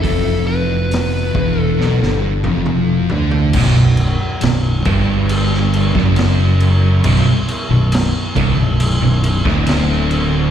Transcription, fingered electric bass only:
\new Staff \with { instrumentName = "Fingered electric bass" } { \clef bass \time 4/4 \key b \minor \tempo 4 = 68 eis,,4. e,,8 b,,16 g,,8 eis,,8. d,8 | b,,,16 b,,,8 r16 b,,,8 g,,4~ g,,16 fis,,4~ fis,,16 | b,,,16 r8 b,,,8 r16 c,,16 b,,,8 b,,,8 d,,4~ d,,16 | }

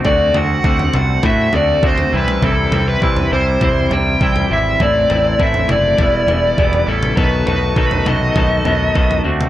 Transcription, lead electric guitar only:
\new Staff \with { instrumentName = "Lead electric guitar" } { \time 4/4 \key b \phrygian \tempo 4 = 101 d''8 fis''4 fis''8 e''8 d''8 c''8 b'8 | a'8. b'8. c''4 g''4 e''8 | d''4 e''8 d''2 a'8 | b'8 b'4 dis''2 r8 | }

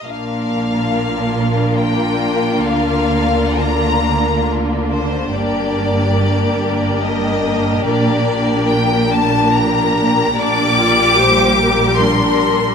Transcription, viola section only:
\new Staff \with { instrumentName = "Viola section" } { \time 3/4 \key bes \major \tempo 4 = 72 << { d'2.~ | d'2. | d'2.~ | d'2. |
\key g \minor d'8 f'8 g'4 d'4 | } \\ { bes2.~ | bes2. | bes2.~ | bes2. |
bes4 g2 | } >> }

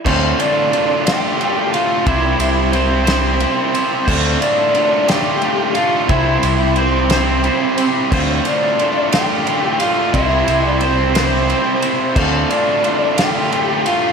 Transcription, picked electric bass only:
\new Staff \with { instrumentName = "Picked electric bass" } { \clef bass \time 6/8 \key d \minor \tempo 4. = 59 d,8 r2 r8 | c,8 c,2 r8 | d,8 r2 r8 | c,8 c,2 r8 |
d,8 r2 r8 | c,8 c,2 r8 | d,8 r2 r8 | }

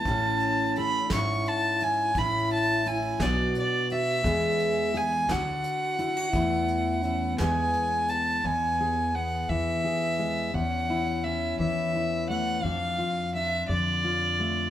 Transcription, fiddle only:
\new Staff \with { instrumentName = "Fiddle" } { \time 6/8 \key e \mixolydian \tempo 4. = 57 a''4 b''8 cis'''8 a''8 gis''8 | b''8 a''8 gis''8 d''8 d''8 e''8~ | e''4 gis''8 fis''4.~ | fis''4. gis''4 a''8 |
gis''4 fis''8 e''4. | fis''4 e''8 e''4 fis''8 | f''4 e''8 d''4. | }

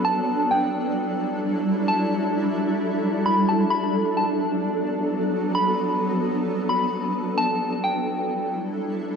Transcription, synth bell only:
\new Staff \with { instrumentName = "Synth bell" } { \time 4/4 \key e \minor \tempo 4 = 131 a''4 g''2 r4 | a''4 r2 b''8 a''8 | b''4 a''2 r4 | b''4 r4. b''4. |
a''4 g''2 r4 | }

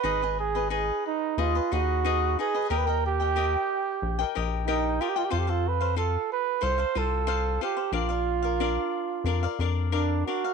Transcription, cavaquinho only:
\new Staff \with { instrumentName = "Cavaquinho" } { \time 4/4 \key aes \dorian \tempo 4 = 91 <ees' aes' ces'' ees''>16 <aes' ces'' ees''>8 <aes' ces'' ees''>16 <ees' aes' ces'' ees''>4 <ees' aes' ces'' ees''>16 <aes' ces'' ees''>16 <ees' aes' ces'' ees''>8 <ees' aes' ces'' ees''>8 <ees' aes' ces'' ees''>16 <aes' ces'' ees''>16 | <g' bes' ees'' g''>16 <bes' ees'' g''>8 <bes' ees'' g''>16 <g' bes' ees'' g''>4~ <g' bes' ees'' g''>16 <bes' ees'' g''>16 <g' bes' ees'' g''>8 <g' bes' ees'' g''>8 <g' bes' ees'' g''>16 <bes' ees'' g''>16 | <f' a' c'' f''>16 <a' c'' f''>8 <a' c'' f''>16 <f' a' f''>4 <f' a' c'' f''>16 <a' c'' f''>16 <f' a' c'' f''>8 <f' a' c'' f''>8 <f' a' c'' f''>16 <a' c'' f''>16 | <d' bes' d'' f''>16 <bes' d'' f''>8 <bes' d'' f''>16 <d' bes' d'' f''>4 <d' bes' d'' f''>16 <bes' d'' f''>16 <d' bes' d'' f''>8 <d' bes' d'' f''>8 <d' bes' d'' f''>16 <bes' d'' f''>16 | }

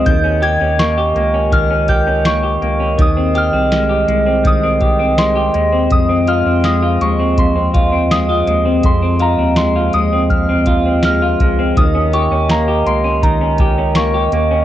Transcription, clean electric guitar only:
\new Staff \with { instrumentName = "Clean electric guitar" } { \time 4/4 \key f \minor \tempo 4 = 82 ees16 des'16 g'16 des'16 bes16 g'16 bes16 des'16 ees16 des'16 g'16 des'16 bes16 g'16 bes16 des'16 | ees16 c'16 g'16 c'16 aes16 g'16 aes16 c'16 ees16 c'16 g'16 c'16 aes16 g'16 aes16 c'16 | f,16 c'16 f'16 c'16 aes16 f'16 aes16 c'16 f,16 c'16 f'16 c'16 aes16 f'16 aes16 c'16 | f,16 c'16 f'16 c'16 aes16 f'16 aes16 c'16 f,16 c'16 f'16 c'16 aes16 f'16 aes16 c'16 |
ees16 des'16 g'16 des'16 bes16 g'16 bes16 des'16 ees16 des'16 g'16 des'16 bes16 g'16 bes16 des'16 | }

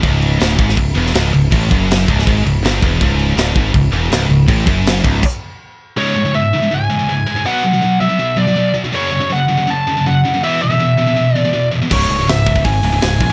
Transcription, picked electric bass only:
\new Staff \with { instrumentName = "Picked electric bass" } { \clef bass \time 4/4 \key cis \phrygian \tempo 4 = 162 cis,,4 d,,8 gis,,8 cis,,8 e,,8 cis,,8 cis,,8 | a,,8 fis,,4 cis,,8 gis,,8 cis,,8 g,,8 e,,8 | cis,,4 d,,8 gis,,8 cis,,8 e,,8 cis,,8 cis,,8 | a,,8 fis,,4 cis,,8 r2 |
r1 | r1 | r1 | r1 |
cis,,8 cis,,8 cis,,8 cis,,8 gis,,8 cis,,8 cis,,8 ais,,8 | }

